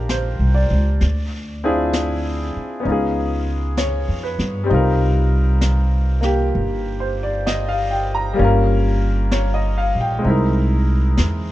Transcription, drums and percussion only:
0.09 brush sweep, snare, hi-hat pedal
1.01 brush sweep, snare
1.93 brush sweep, snare, hi-hat pedal
2.85 brush sweep
3.77 brush sweep, snare, hi-hat pedal
4.39 snare
4.69 brush sweep
5.61 brush sweep, snare, hi-hat pedal
6.22 snare
6.54 brush sweep
7.47 brush sweep, snare, hi-hat pedal
8.39 brush sweep
9.31 brush sweep, snare, hi-hat pedal
10.24 brush sweep
11.17 brush sweep, snare, hi-hat pedal

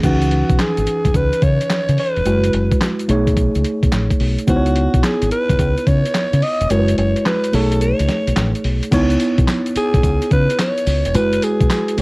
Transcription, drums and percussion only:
0.03 kick, closed hi-hat, crash, shaker
0.21 closed hi-hat, shaker
0.31 closed hi-hat
0.49 kick, closed hi-hat, shaker
0.59 snare, clap, closed hi-hat, shaker
0.77 closed hi-hat, shaker
0.86 closed hi-hat, shaker
1.05 kick, closed hi-hat, shaker
1.14 kick, closed hi-hat, shaker
1.33 closed hi-hat, shaker
1.42 kick, closed hi-hat, shaker
1.61 closed hi-hat, shaker
1.70 snare, clap, closed hi-hat, shaker
1.89 closed hi-hat, shaker
1.98 open hi-hat
2.16 closed hi-hat, shaker
2.26 closed hi-hat, shaker
2.44 closed hi-hat, shaker
2.53 closed hi-hat
2.72 kick, closed hi-hat, shaker
2.81 snare, clap, closed hi-hat, shaker
2.99 closed hi-hat, shaker
3.09 closed hi-hat, shaker
3.27 kick, closed hi-hat, shaker
3.37 kick, closed hi-hat, shaker
3.55 closed hi-hat, shaker
3.64 closed hi-hat, shaker
3.83 kick, closed hi-hat, shaker
3.92 snare, clap, closed hi-hat, shaker
4.11 kick, closed hi-hat, shaker
4.20 open hi-hat
4.39 closed hi-hat, shaker
4.48 kick, closed hi-hat, shaker
4.66 closed hi-hat, shaker
4.76 closed hi-hat
4.94 kick, closed hi-hat, shaker
5.03 snare, clap, closed hi-hat, shaker
5.22 closed hi-hat, shaker
5.31 closed hi-hat, shaker
5.49 kick, closed hi-hat, shaker
5.59 kick, closed hi-hat, shaker
5.77 closed hi-hat, shaker
5.87 kick, closed hi-hat, shaker
6.05 closed hi-hat, shaker
6.14 snare, clap, closed hi-hat, shaker
6.33 closed hi-hat, shaker
6.42 open hi-hat
6.61 closed hi-hat, shaker
6.70 closed hi-hat, shaker
6.88 closed hi-hat, shaker
6.98 closed hi-hat
7.16 closed hi-hat, shaker
7.26 snare, clap, closed hi-hat, shaker
7.44 closed hi-hat, shaker
7.53 open hi-hat, shaker
7.72 closed hi-hat, shaker
7.81 closed hi-hat, shaker
7.99 closed hi-hat, shaker
8.09 snare, closed hi-hat, shaker
8.27 closed hi-hat, shaker
8.36 snare, clap, closed hi-hat, shaker
8.55 closed hi-hat, shaker
8.64 open hi-hat
8.83 closed hi-hat, shaker
8.92 kick, closed hi-hat, crash, tambourine, shaker
9.10 closed hi-hat, shaker
9.20 closed hi-hat, tambourine, shaker
9.38 kick, closed hi-hat, shaker
9.48 snare, clap, closed hi-hat, tambourine, shaker
9.66 closed hi-hat, shaker
9.76 closed hi-hat, tambourine, shaker
9.94 kick, closed hi-hat, shaker
10.03 kick, closed hi-hat, tambourine, shaker
10.22 closed hi-hat, shaker
10.31 kick, closed hi-hat, shaker
10.50 closed hi-hat, shaker
10.59 snare, clap, closed hi-hat, tambourine, shaker
10.78 closed hi-hat, shaker
10.87 open hi-hat, tambourine, shaker
11.05 closed hi-hat, shaker
11.14 closed hi-hat, tambourine, shaker
11.33 closed hi-hat, shaker
11.42 closed hi-hat, tambourine, shaker
11.60 kick, closed hi-hat, shaker
11.70 snare, clap, closed hi-hat, tambourine, shaker
11.88 closed hi-hat, shaker
11.98 closed hi-hat, tambourine, shaker

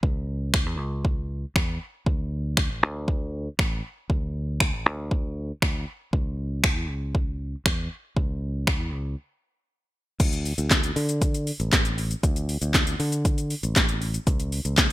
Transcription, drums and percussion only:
0.03 kick
0.54 finger snap, kick
1.05 kick
1.56 finger snap, kick
2.06 kick
2.57 finger snap, kick
3.08 kick
3.59 finger snap, kick
4.10 kick
4.60 finger snap, kick
5.11 kick
5.62 finger snap, kick
6.13 kick
6.64 finger snap, kick
7.15 kick
7.66 finger snap, kick
8.17 kick
8.67 finger snap, kick
10.20 kick, closed hi-hat, crash, shaker
10.33 closed hi-hat, shaker
10.45 open hi-hat, shaker
10.58 closed hi-hat, shaker
10.71 kick, snare, clap, closed hi-hat, shaker
10.83 closed hi-hat, shaker
10.96 open hi-hat, shaker
11.09 closed hi-hat, shaker
11.22 kick, closed hi-hat, shaker
11.34 closed hi-hat, shaker
11.47 open hi-hat, shaker
11.60 closed hi-hat, shaker
11.72 kick, snare, clap, closed hi-hat, shaker
11.85 closed hi-hat, shaker
11.98 open hi-hat, shaker
12.11 closed hi-hat, shaker
12.23 kick, closed hi-hat, shaker
12.36 closed hi-hat, shaker
12.49 open hi-hat, shaker
12.62 closed hi-hat, shaker
12.74 kick, snare, clap, closed hi-hat, shaker
12.87 closed hi-hat, shaker
13.00 open hi-hat, shaker
13.12 closed hi-hat, shaker
13.25 kick, closed hi-hat, shaker
13.38 closed hi-hat, shaker
13.50 open hi-hat, shaker
13.63 closed hi-hat, shaker
13.76 kick, snare, clap, closed hi-hat, shaker
13.89 closed hi-hat, shaker
14.02 open hi-hat, shaker
14.14 closed hi-hat, shaker
14.27 kick, closed hi-hat, shaker
14.40 closed hi-hat, shaker
14.52 open hi-hat, shaker
14.65 closed hi-hat, shaker
14.78 kick, snare, clap, closed hi-hat, shaker

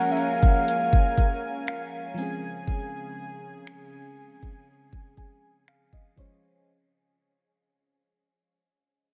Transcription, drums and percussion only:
0.17 closed hi-hat
0.43 kick
0.68 closed hi-hat
0.93 kick
1.18 kick, closed hi-hat
1.67 finger snap, closed hi-hat
2.18 closed hi-hat
2.67 kick
3.67 finger snap
4.43 kick
4.93 kick
5.17 kick
5.68 finger snap
5.93 kick
6.17 kick

